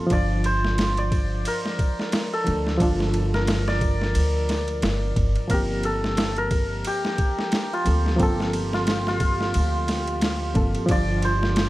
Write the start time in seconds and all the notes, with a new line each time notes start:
Already playing: F3 A#3 C4 F4 A4
0.07 G1 F3, kick, ride
0.12 D4 F4 D5
0.44 C5, ride
0.65 snare
0.78 snare, ride
0.97 D5, ride
1.12 kick, ride
1.45 A#4, ride
1.66 snare
1.79 kick, ride
1.99 snare
2.12 snare, ride
2.33 A4
2.44 D2 F3 A3 D4 A4, ride
2.67 snare
2.77 G1 F3, kick, ride
2.82 D4 F4
3.00 snare
3.14 ride
3.34 A#4, snare
3.47 snare, ride
3.68 D5, snare
3.81 kick, ride
4.02 snare
4.15 D2, ride
4.49 snare, ride
4.68 ride
4.82 G1, snare, ride
5.16 G1, kick, ride
5.36 ride
5.48 G1 F3 A#3 G4 A#4, kick, ride
5.52 C4 G4
5.83 A4, ride
6.04 snare
6.17 snare, ride
6.36 A#4, ride
6.51 kick, ride
6.85 G4, ride
7.05 snare
7.18 kick, ride
7.39 snare
7.52 snare, ride
7.73 F4
7.85 D2 F3 A#3 C4 A4, ride
8.06 snare
8.16 F3 A#3, kick, ride
8.20 G1 C4 A4
8.40 snare
8.53 ride
8.73 F4, snare
8.87 snare, ride
9.07 F4, snare
9.20 kick, ride
9.41 snare
9.54 D2, ride
9.88 snare, ride
10.07 ride
10.21 snare, ride
10.54 G1 F3 A#3 C4 A4, kick, ride
10.75 ride
10.86 G1 F3, kick, ride
10.90 D4 F4 D5
11.22 C5, ride
11.43 snare
11.56 snare, ride